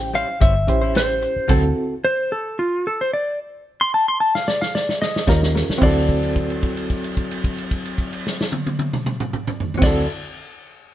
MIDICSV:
0, 0, Header, 1, 8, 480
1, 0, Start_track
1, 0, Tempo, 540541
1, 1327, Time_signature, 4, 2, 24, 8
1, 9717, End_track
2, 0, Start_track
2, 0, Title_t, "Electric slide guitar"
2, 0, Program_c, 0, 29
2, 0, Note_on_c, 0, 79, 106
2, 132, Note_off_c, 0, 79, 0
2, 135, Note_on_c, 0, 77, 93
2, 354, Note_off_c, 0, 77, 0
2, 371, Note_on_c, 0, 76, 98
2, 815, Note_off_c, 0, 76, 0
2, 861, Note_on_c, 0, 72, 93
2, 1348, Note_off_c, 0, 72, 0
2, 1816, Note_on_c, 0, 72, 102
2, 2044, Note_off_c, 0, 72, 0
2, 2060, Note_on_c, 0, 69, 93
2, 2287, Note_off_c, 0, 69, 0
2, 2300, Note_on_c, 0, 65, 91
2, 2526, Note_off_c, 0, 65, 0
2, 2548, Note_on_c, 0, 69, 86
2, 2660, Note_off_c, 0, 69, 0
2, 2674, Note_on_c, 0, 72, 92
2, 2774, Note_off_c, 0, 72, 0
2, 2784, Note_on_c, 0, 74, 99
2, 3008, Note_off_c, 0, 74, 0
2, 3383, Note_on_c, 0, 84, 106
2, 3489, Note_off_c, 0, 84, 0
2, 3500, Note_on_c, 0, 81, 95
2, 3616, Note_off_c, 0, 81, 0
2, 3626, Note_on_c, 0, 84, 95
2, 3730, Note_off_c, 0, 84, 0
2, 3733, Note_on_c, 0, 81, 89
2, 3852, Note_off_c, 0, 81, 0
2, 3864, Note_on_c, 0, 77, 90
2, 3969, Note_off_c, 0, 77, 0
2, 3976, Note_on_c, 0, 74, 100
2, 4094, Note_off_c, 0, 74, 0
2, 4098, Note_on_c, 0, 77, 91
2, 4206, Note_off_c, 0, 77, 0
2, 4217, Note_on_c, 0, 74, 90
2, 4445, Note_off_c, 0, 74, 0
2, 4454, Note_on_c, 0, 75, 100
2, 4916, Note_off_c, 0, 75, 0
2, 5179, Note_on_c, 0, 74, 85
2, 8636, Note_off_c, 0, 74, 0
2, 8733, Note_on_c, 0, 74, 76
2, 8929, Note_off_c, 0, 74, 0
2, 9717, End_track
3, 0, Start_track
3, 0, Title_t, "Reed electric piano"
3, 0, Program_c, 1, 4
3, 0, Note_on_c, 1, 61, 69
3, 0, Note_on_c, 1, 64, 64
3, 0, Note_on_c, 1, 67, 64
3, 0, Note_on_c, 1, 72, 76
3, 301, Note_off_c, 1, 61, 0
3, 303, Note_off_c, 1, 64, 0
3, 306, Note_off_c, 1, 67, 0
3, 310, Note_off_c, 1, 72, 0
3, 600, Note_on_c, 1, 61, 71
3, 608, Note_on_c, 1, 64, 67
3, 612, Note_on_c, 1, 67, 72
3, 617, Note_on_c, 1, 72, 83
3, 1277, Note_off_c, 1, 61, 0
3, 1281, Note_off_c, 1, 64, 0
3, 1283, Note_off_c, 1, 67, 0
3, 1286, Note_off_c, 1, 72, 0
3, 1319, Note_on_c, 1, 60, 66
3, 1324, Note_on_c, 1, 64, 63
3, 1328, Note_on_c, 1, 66, 64
3, 1337, Note_on_c, 1, 69, 82
3, 1712, Note_off_c, 1, 60, 0
3, 1714, Note_off_c, 1, 64, 0
3, 1716, Note_off_c, 1, 66, 0
3, 1721, Note_off_c, 1, 69, 0
3, 4682, Note_on_c, 1, 61, 69
3, 4687, Note_on_c, 1, 65, 69
3, 4693, Note_on_c, 1, 67, 65
3, 4700, Note_on_c, 1, 70, 77
3, 5134, Note_off_c, 1, 61, 0
3, 5135, Note_on_c, 1, 60, 79
3, 5136, Note_off_c, 1, 65, 0
3, 5140, Note_off_c, 1, 67, 0
3, 5143, Note_off_c, 1, 70, 0
3, 5156, Note_on_c, 1, 64, 69
3, 5177, Note_on_c, 1, 66, 69
3, 5201, Note_on_c, 1, 69, 85
3, 8614, Note_off_c, 1, 60, 0
3, 8625, Note_off_c, 1, 64, 0
3, 8635, Note_off_c, 1, 66, 0
3, 8647, Note_off_c, 1, 69, 0
3, 8691, Note_on_c, 1, 60, 77
3, 8715, Note_on_c, 1, 64, 69
3, 8736, Note_on_c, 1, 66, 72
3, 8760, Note_on_c, 1, 69, 87
3, 8907, Note_off_c, 1, 60, 0
3, 8920, Note_off_c, 1, 64, 0
3, 8931, Note_off_c, 1, 66, 0
3, 8944, Note_off_c, 1, 69, 0
3, 9717, End_track
4, 0, Start_track
4, 0, Title_t, "Clean electric guitar"
4, 0, Program_c, 2, 27
4, 121, Note_on_c, 2, 55, 56
4, 126, Note_on_c, 2, 61, 61
4, 131, Note_on_c, 2, 64, 65
4, 137, Note_on_c, 2, 72, 60
4, 235, Note_off_c, 2, 72, 0
4, 241, Note_off_c, 2, 64, 0
4, 246, Note_off_c, 2, 61, 0
4, 249, Note_off_c, 2, 55, 0
4, 360, Note_on_c, 2, 55, 84
4, 365, Note_on_c, 2, 61, 70
4, 369, Note_on_c, 2, 64, 84
4, 374, Note_on_c, 2, 72, 79
4, 477, Note_off_c, 2, 72, 0
4, 482, Note_off_c, 2, 64, 0
4, 486, Note_off_c, 2, 61, 0
4, 489, Note_off_c, 2, 55, 0
4, 724, Note_on_c, 2, 72, 52
4, 735, Note_on_c, 2, 64, 52
4, 743, Note_on_c, 2, 61, 43
4, 833, Note_off_c, 2, 61, 0
4, 835, Note_on_c, 2, 55, 60
4, 839, Note_off_c, 2, 64, 0
4, 842, Note_off_c, 2, 72, 0
4, 844, Note_on_c, 2, 61, 57
4, 849, Note_on_c, 2, 64, 60
4, 854, Note_on_c, 2, 72, 67
4, 954, Note_off_c, 2, 72, 0
4, 960, Note_off_c, 2, 64, 0
4, 963, Note_off_c, 2, 61, 0
4, 967, Note_off_c, 2, 55, 0
4, 1315, Note_on_c, 2, 54, 79
4, 1320, Note_on_c, 2, 60, 85
4, 1325, Note_on_c, 2, 64, 88
4, 1328, Note_on_c, 2, 69, 93
4, 1432, Note_off_c, 2, 69, 0
4, 1437, Note_off_c, 2, 64, 0
4, 1440, Note_off_c, 2, 60, 0
4, 1447, Note_off_c, 2, 54, 0
4, 4680, Note_on_c, 2, 55, 53
4, 4687, Note_on_c, 2, 61, 59
4, 4693, Note_on_c, 2, 65, 63
4, 4699, Note_on_c, 2, 70, 61
4, 4799, Note_off_c, 2, 70, 0
4, 4803, Note_off_c, 2, 65, 0
4, 4807, Note_off_c, 2, 61, 0
4, 4810, Note_off_c, 2, 55, 0
4, 5131, Note_on_c, 2, 54, 73
4, 5176, Note_on_c, 2, 60, 82
4, 5215, Note_on_c, 2, 64, 82
4, 5248, Note_on_c, 2, 69, 88
4, 8648, Note_off_c, 2, 54, 0
4, 8670, Note_off_c, 2, 60, 0
4, 8682, Note_on_c, 2, 54, 77
4, 8706, Note_off_c, 2, 69, 0
4, 8708, Note_off_c, 2, 64, 0
4, 8729, Note_on_c, 2, 60, 82
4, 8766, Note_on_c, 2, 64, 84
4, 8800, Note_on_c, 2, 69, 84
4, 8918, Note_off_c, 2, 54, 0
4, 8942, Note_off_c, 2, 60, 0
4, 8960, Note_off_c, 2, 64, 0
4, 8977, Note_off_c, 2, 69, 0
4, 9717, End_track
5, 0, Start_track
5, 0, Title_t, "Fingered electric bass"
5, 0, Program_c, 3, 33
5, 0, Note_on_c, 3, 33, 106
5, 197, Note_off_c, 3, 33, 0
5, 368, Note_on_c, 3, 31, 91
5, 607, Note_off_c, 3, 31, 0
5, 607, Note_on_c, 3, 33, 90
5, 1106, Note_off_c, 3, 33, 0
5, 1324, Note_on_c, 3, 38, 100
5, 1522, Note_off_c, 3, 38, 0
5, 4685, Note_on_c, 3, 39, 96
5, 4987, Note_off_c, 3, 39, 0
5, 5165, Note_on_c, 3, 38, 87
5, 8629, Note_off_c, 3, 38, 0
5, 8720, Note_on_c, 3, 38, 91
5, 8922, Note_off_c, 3, 38, 0
5, 9717, End_track
6, 0, Start_track
6, 0, Title_t, "Muted clean electric guitar strokes"
6, 246, Note_on_c, 9, 29, 44
6, 335, Note_off_c, 9, 29, 0
6, 488, Note_on_c, 9, 29, 42
6, 577, Note_off_c, 9, 29, 0
6, 602, Note_on_c, 9, 29, 40
6, 690, Note_off_c, 9, 29, 0
6, 965, Note_on_c, 9, 29, 47
6, 1054, Note_off_c, 9, 29, 0
6, 1081, Note_on_c, 9, 29, 40
6, 1170, Note_off_c, 9, 29, 0
6, 1443, Note_on_c, 9, 29, 45
6, 1531, Note_off_c, 9, 29, 0
6, 4810, Note_on_c, 9, 29, 47
6, 4898, Note_off_c, 9, 29, 0
6, 4922, Note_on_c, 9, 29, 46
6, 5011, Note_off_c, 9, 29, 0
6, 9717, End_track
7, 0, Start_track
7, 0, Title_t, "Muted fingered electric bass strokes"
7, 1211, Note_on_c, 9, 29, 36
7, 1299, Note_off_c, 9, 29, 0
7, 5054, Note_on_c, 9, 29, 37
7, 5143, Note_off_c, 9, 29, 0
7, 9717, End_track
8, 0, Start_track
8, 0, Title_t, "Drums"
8, 130, Note_on_c, 9, 42, 67
8, 219, Note_off_c, 9, 42, 0
8, 368, Note_on_c, 9, 36, 110
8, 368, Note_on_c, 9, 42, 81
8, 457, Note_off_c, 9, 36, 0
8, 457, Note_off_c, 9, 42, 0
8, 606, Note_on_c, 9, 42, 62
8, 607, Note_on_c, 9, 36, 74
8, 695, Note_off_c, 9, 42, 0
8, 696, Note_off_c, 9, 36, 0
8, 844, Note_on_c, 9, 42, 92
8, 855, Note_on_c, 9, 38, 119
8, 933, Note_off_c, 9, 42, 0
8, 944, Note_off_c, 9, 38, 0
8, 1087, Note_on_c, 9, 42, 63
8, 1176, Note_off_c, 9, 42, 0
8, 1324, Note_on_c, 9, 42, 88
8, 1324, Note_on_c, 9, 49, 75
8, 1326, Note_on_c, 9, 36, 105
8, 1413, Note_off_c, 9, 42, 0
8, 1413, Note_off_c, 9, 49, 0
8, 1414, Note_off_c, 9, 36, 0
8, 3865, Note_on_c, 9, 38, 58
8, 3954, Note_off_c, 9, 38, 0
8, 3977, Note_on_c, 9, 38, 85
8, 4066, Note_off_c, 9, 38, 0
8, 4103, Note_on_c, 9, 38, 73
8, 4192, Note_off_c, 9, 38, 0
8, 4220, Note_on_c, 9, 38, 84
8, 4308, Note_off_c, 9, 38, 0
8, 4343, Note_on_c, 9, 38, 74
8, 4432, Note_off_c, 9, 38, 0
8, 4457, Note_on_c, 9, 38, 87
8, 4546, Note_off_c, 9, 38, 0
8, 4584, Note_on_c, 9, 38, 82
8, 4673, Note_off_c, 9, 38, 0
8, 4686, Note_on_c, 9, 36, 88
8, 4695, Note_on_c, 9, 38, 99
8, 4775, Note_off_c, 9, 36, 0
8, 4784, Note_off_c, 9, 38, 0
8, 4822, Note_on_c, 9, 38, 82
8, 4911, Note_off_c, 9, 38, 0
8, 4935, Note_on_c, 9, 38, 97
8, 5024, Note_off_c, 9, 38, 0
8, 5061, Note_on_c, 9, 38, 82
8, 5150, Note_off_c, 9, 38, 0
8, 5162, Note_on_c, 9, 49, 85
8, 5166, Note_on_c, 9, 36, 101
8, 5251, Note_off_c, 9, 49, 0
8, 5255, Note_off_c, 9, 36, 0
8, 5405, Note_on_c, 9, 49, 43
8, 5406, Note_on_c, 9, 36, 63
8, 5494, Note_off_c, 9, 49, 0
8, 5495, Note_off_c, 9, 36, 0
8, 5531, Note_on_c, 9, 57, 43
8, 5620, Note_off_c, 9, 57, 0
8, 5646, Note_on_c, 9, 49, 44
8, 5647, Note_on_c, 9, 36, 62
8, 5734, Note_off_c, 9, 49, 0
8, 5736, Note_off_c, 9, 36, 0
8, 5773, Note_on_c, 9, 57, 44
8, 5862, Note_off_c, 9, 57, 0
8, 5886, Note_on_c, 9, 49, 51
8, 5887, Note_on_c, 9, 36, 67
8, 5975, Note_off_c, 9, 49, 0
8, 5976, Note_off_c, 9, 36, 0
8, 6012, Note_on_c, 9, 57, 47
8, 6101, Note_off_c, 9, 57, 0
8, 6126, Note_on_c, 9, 49, 46
8, 6127, Note_on_c, 9, 36, 62
8, 6215, Note_off_c, 9, 49, 0
8, 6216, Note_off_c, 9, 36, 0
8, 6252, Note_on_c, 9, 57, 49
8, 6341, Note_off_c, 9, 57, 0
8, 6366, Note_on_c, 9, 49, 48
8, 6367, Note_on_c, 9, 36, 61
8, 6455, Note_off_c, 9, 49, 0
8, 6456, Note_off_c, 9, 36, 0
8, 6493, Note_on_c, 9, 57, 52
8, 6581, Note_off_c, 9, 57, 0
8, 6608, Note_on_c, 9, 36, 68
8, 6610, Note_on_c, 9, 49, 51
8, 6697, Note_off_c, 9, 36, 0
8, 6699, Note_off_c, 9, 49, 0
8, 6734, Note_on_c, 9, 57, 49
8, 6823, Note_off_c, 9, 57, 0
8, 6848, Note_on_c, 9, 36, 63
8, 6848, Note_on_c, 9, 49, 51
8, 6937, Note_off_c, 9, 36, 0
8, 6937, Note_off_c, 9, 49, 0
8, 6975, Note_on_c, 9, 57, 51
8, 7063, Note_off_c, 9, 57, 0
8, 7088, Note_on_c, 9, 36, 61
8, 7089, Note_on_c, 9, 49, 51
8, 7177, Note_off_c, 9, 36, 0
8, 7178, Note_off_c, 9, 49, 0
8, 7217, Note_on_c, 9, 57, 51
8, 7306, Note_off_c, 9, 57, 0
8, 7341, Note_on_c, 9, 38, 83
8, 7430, Note_off_c, 9, 38, 0
8, 7466, Note_on_c, 9, 38, 94
8, 7555, Note_off_c, 9, 38, 0
8, 7568, Note_on_c, 9, 48, 93
8, 7657, Note_off_c, 9, 48, 0
8, 7695, Note_on_c, 9, 48, 92
8, 7784, Note_off_c, 9, 48, 0
8, 7805, Note_on_c, 9, 48, 101
8, 7894, Note_off_c, 9, 48, 0
8, 7934, Note_on_c, 9, 47, 99
8, 8022, Note_off_c, 9, 47, 0
8, 8047, Note_on_c, 9, 47, 102
8, 8136, Note_off_c, 9, 47, 0
8, 8172, Note_on_c, 9, 45, 101
8, 8261, Note_off_c, 9, 45, 0
8, 8288, Note_on_c, 9, 45, 98
8, 8377, Note_off_c, 9, 45, 0
8, 8413, Note_on_c, 9, 45, 106
8, 8502, Note_off_c, 9, 45, 0
8, 8527, Note_on_c, 9, 43, 102
8, 8616, Note_off_c, 9, 43, 0
8, 8651, Note_on_c, 9, 43, 103
8, 8720, Note_on_c, 9, 36, 108
8, 8720, Note_on_c, 9, 49, 104
8, 8732, Note_on_c, 9, 38, 94
8, 8740, Note_off_c, 9, 43, 0
8, 8809, Note_off_c, 9, 36, 0
8, 8809, Note_off_c, 9, 49, 0
8, 8820, Note_off_c, 9, 38, 0
8, 9717, End_track
0, 0, End_of_file